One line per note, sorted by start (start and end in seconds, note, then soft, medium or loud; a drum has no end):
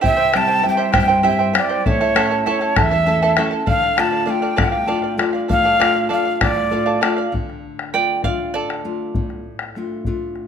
0.01 0.63 C3 medium
0.01 0.17 E4 medium
0.01 0.18 G4 medium
0.01 0.16 C5 medium
0.01 0.18 E5 medium
0.01 0.15 G5 medium
0.01 bombo low medium
0.06 0.38 E5 loud
0.17 0.31 E4 soft
0.17 0.32 C5 soft
0.17 0.33 G5 medium
0.17 bombo rim soft
0.32 0.63 G3 soft
0.32 0.65 C4 soft
0.32 0.48 E4 medium
0.32 0.64 E4 medium
0.32 0.47 C5 medium
0.32 0.48 E5 medium
0.32 0.46 G5 medium
0.32 bombo rim medium
0.37 0.66 A5 medium
0.48 0.61 E4 soft
0.48 0.62 C5 soft
0.48 0.62 G5 soft
0.62 1.13 G3 soft
0.62 1.14 C4 soft
0.62 0.77 E4 medium
0.62 1.14 E4 soft
0.62 0.76 C5 medium
0.62 0.77 E5 medium
0.62 0.76 G5 medium
0.69 0.95 G5 medium
0.77 0.92 E4 medium
0.77 0.91 G4 medium
0.77 0.92 C5 medium
0.77 0.91 E5 medium
0.77 0.93 G5 medium
0.77 bombo rim soft
0.92 1.54 G2 medium
0.92 1.08 E4 medium
0.92 1.09 G4 medium
0.92 1.08 C5 medium
0.92 1.09 E5 medium
0.92 1.07 G5 medium
0.92 bombo rim medium
0.92 bombo low medium
0.99 1.25 G5 medium
1.08 1.22 E4 soft
1.08 1.23 C5 soft
1.08 1.23 G5 medium
1.23 1.54 G3 soft
1.23 1.55 C4 soft
1.23 1.39 E4 medium
1.23 1.55 E4 medium
1.23 1.39 G4 medium
1.23 1.39 C5 medium
1.23 1.40 E5 medium
1.23 1.38 G5 medium
1.28 1.55 E5 medium
1.39 1.53 E4 soft
1.39 1.53 C5 medium
1.39 1.54 G5 medium
1.53 1.80 G3 soft
1.53 1.80 C4 soft
1.53 1.69 E4 medium
1.53 1.80 E4 medium
1.53 1.69 C5 medium
1.53 1.70 E5 medium
1.53 1.68 G5 medium
1.53 bombo rim medium
1.58 1.90 D5 medium
1.69 1.85 E4 soft
1.69 1.86 C5 soft
1.69 1.85 G5 medium
1.86 2.45 A2 medium
1.86 2.00 E4 medium
1.86 2.00 A4 medium
1.86 2.48 C#5 medium
1.86 2.00 E5 medium
1.86 1.99 A5 medium
1.86 bombo low medium
2.01 2.15 E4 medium
2.01 2.15 A4 medium
2.01 2.14 C#5 medium
2.01 2.15 E5 medium
2.01 2.16 A5 medium
2.01 bombo rim soft
2.15 2.45 A3 medium
2.15 2.45 C#4 soft
2.15 2.46 E4 medium
2.15 2.31 E4 medium
2.15 2.30 A4 medium
2.15 2.31 C#5 medium
2.15 2.32 E5 medium
2.15 2.29 A5 medium
2.15 bombo rim medium
2.31 2.46 E4 soft
2.31 2.46 A4 soft
2.31 2.46 A5 soft
2.46 2.95 A3 soft
2.46 2.95 C#4 soft
2.46 2.95 E4 medium
2.46 2.61 E4 medium
2.46 2.60 A4 medium
2.46 2.62 C#5 medium
2.46 2.81 C#5 medium
2.46 2.62 E5 medium
2.46 2.60 A5 medium
2.61 2.75 E4 soft
2.61 2.76 A4 soft
2.61 2.77 A5 medium
2.61 bombo rim soft
2.76 3.36 E2 medium
2.76 2.91 E4 medium
2.76 2.91 A4 medium
2.76 2.92 E5 medium
2.76 3.47 E5 medium
2.76 2.90 A5 medium
2.76 bombo rim medium
2.76 bombo low medium
2.91 3.05 E4 soft
2.91 3.06 A4 medium
2.91 3.07 A5 medium
3.06 3.36 A3 soft
3.06 3.36 C#4 soft
3.06 3.22 E4 medium
3.06 3.37 E4 medium
3.06 3.21 A4 medium
3.06 3.22 E5 medium
3.06 3.21 A5 medium
3.22 3.37 E4 medium
3.22 3.37 A4 medium
3.22 3.36 C#5 medium
3.22 3.36 E5 medium
3.22 3.38 A5 medium
3.37 3.62 A3 soft
3.37 3.62 C#4 soft
3.37 3.62 E4 medium
3.37 3.51 E4 medium
3.37 3.51 A4 medium
3.37 3.53 C#5 medium
3.37 3.53 E5 medium
3.37 3.50 A5 medium
3.37 bombo rim medium
3.51 3.66 E4 soft
3.51 3.65 A4 soft
3.51 3.67 A5 medium
3.66 4.27 D3 medium
3.66 3.83 A4 medium
3.66 3.83 D5 medium
3.66 3.81 F5 medium
3.66 4.01 F5 loud
3.66 bombo low medium
3.82 3.96 D5 soft
3.82 3.96 F5 medium
3.82 bombo rim soft
3.97 4.25 A3 medium
3.97 4.26 D4 soft
3.97 4.27 F4 medium
3.97 4.13 A4 medium
3.97 4.11 D5 medium
3.97 4.10 F5 medium
3.97 4.32 A5 medium
3.97 bombo rim medium
4.11 4.25 D5 soft
4.11 4.26 F5 medium
4.25 4.76 A3 soft
4.25 4.77 D4 soft
4.25 4.77 F4 soft
4.25 4.42 A4 medium
4.25 4.41 D5 medium
4.25 4.41 F5 medium
4.30 4.60 G5 medium
4.42 4.55 A4 medium
4.42 4.56 D5 medium
4.42 4.56 F5 medium
4.42 bombo rim soft
4.56 5.17 A2 medium
4.56 4.73 A4 medium
4.56 4.72 D5 medium
4.56 4.71 F5 medium
4.56 bombo rim medium
4.56 bombo low medium
4.62 5.17 G5 medium
4.72 4.87 D5 soft
4.72 4.87 F5 medium
4.86 5.16 A3 soft
4.86 5.17 D4 soft
4.86 5.17 F4 medium
4.86 5.04 A4 medium
4.86 5.02 D5 medium
4.86 5.01 F5 medium
5.02 5.18 D5 soft
5.02 5.18 F5 soft
5.18 5.67 A3 soft
5.18 5.67 D4 soft
5.18 5.68 F4 medium
5.18 5.34 A4 medium
5.18 5.33 D5 medium
5.18 5.32 F5 medium
5.18 bombo rim medium
5.33 5.48 D5 soft
5.33 5.48 F5 soft
5.48 6.09 A2 medium
5.48 5.64 A4 medium
5.48 5.64 D5 medium
5.48 5.63 F5 medium
5.48 6.08 F5 loud
5.48 bombo low medium
5.64 5.78 A4 medium
5.64 5.79 D5 medium
5.64 5.79 F5 medium
5.79 6.09 A3 soft
5.79 6.09 D4 soft
5.79 6.09 F4 medium
5.79 5.95 A4 medium
5.79 5.94 D5 medium
5.79 5.93 F5 medium
5.79 bombo rim medium
5.94 6.09 D5 soft
5.94 6.09 F5 soft
6.09 6.59 A3 soft
6.09 6.59 D4 soft
6.09 6.59 F4 soft
6.09 6.25 A4 medium
6.09 6.25 D5 medium
6.09 6.24 F5 medium
6.09 6.40 F5 medium
6.25 6.40 D5 soft
6.25 6.41 F5 medium
6.40 7.00 A2 medium
6.40 6.56 A4 medium
6.40 6.56 D5 medium
6.40 7.07 D5 medium
6.40 6.55 F5 medium
6.40 bombo rim medium
6.40 bombo low medium
6.56 6.71 D5 soft
6.56 6.71 F5 soft
6.56 bombo rim soft
6.71 7.01 A3 soft
6.71 7.01 D4 soft
6.71 7.01 F4 soft
6.71 6.86 A4 medium
6.71 6.85 D5 medium
6.71 6.85 F5 medium
6.86 7.00 A4 medium
6.86 7.01 D5 medium
6.86 7.02 F5 medium
7.01 7.26 A3 soft
7.01 7.26 D4 soft
7.01 7.27 F4 medium
7.01 7.17 A4 medium
7.01 7.17 D5 medium
7.01 7.15 F5 medium
7.01 bombo rim medium
7.17 7.33 D5 soft
7.17 7.32 F5 medium
7.32 9.10 D3 medium
7.32 bombo low medium
7.50 bombo rim soft
7.79 bombo rim soft
7.94 8.24 A3 soft
7.94 8.24 D4 soft
7.94 8.24 F4 soft
7.94 8.22 D5 medium
7.94 8.22 G5 medium
8.24 8.83 A3 soft
8.24 8.83 D4 soft
8.24 8.83 F4 soft
8.24 8.52 D5 medium
8.24 8.55 F5 medium
8.24 bombo low medium
8.54 10.47 A4 medium
8.54 10.47 D5 medium
8.54 bombo rim soft
8.70 bombo rim soft
8.85 9.43 A3 soft
8.85 9.43 D4 soft
8.85 9.43 F4 soft
9.15 10.47 A2 medium
9.15 bombo low medium
9.30 bombo rim soft
9.59 bombo rim soft
9.75 10.05 A3 soft
9.75 10.05 D4 soft
9.75 10.06 F4 soft
9.75 bombo rim soft
10.05 10.47 A3 soft
10.05 10.47 D4 soft
10.05 10.47 F4 soft
10.05 bombo low medium
10.36 bombo rim soft